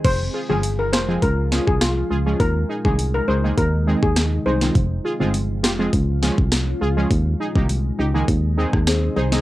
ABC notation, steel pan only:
X:1
M:4/4
L:1/16
Q:1/4=102
K:Fm
V:1 name="Steel pan"
c2 z A z B c z B z2 A F3 z | B2 z A z B c z B z2 A z2 c z | z16 | z16 |]